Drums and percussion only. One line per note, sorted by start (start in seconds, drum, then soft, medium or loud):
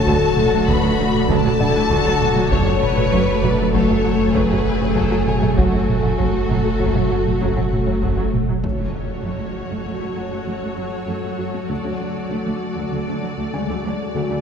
0.06 taiko medium
0.37 taiko mid medium
0.68 taiko medium
0.83 taiko mid soft
1.14 taiko mid medium
1.29 taiko medium
1.44 taiko mid medium
1.60 taiko mid medium
1.90 taiko medium
2.21 taiko mid medium
2.36 taiko mid medium
2.52 taiko loud
2.83 taiko mid medium
2.98 taiko mid soft
3.13 taiko medium
3.44 taiko mid medium
3.74 taiko medium
3.90 taiko mid medium
4.20 taiko mid medium
4.36 taiko medium
4.51 taiko mid medium
4.66 taiko mid medium
4.97 taiko medium
5.28 taiko mid medium
5.43 taiko mid soft
5.58 taiko medium
5.89 taiko mid medium
6.05 taiko mid soft
6.20 taiko medium
6.51 taiko mid medium
6.81 taiko medium
6.96 taiko mid soft
7.27 taiko mid medium
7.42 taiko medium
7.57 taiko mid soft
7.73 taiko mid medium
8.03 taiko medium
8.34 taiko mid medium
8.49 taiko mid medium
8.64 taiko soft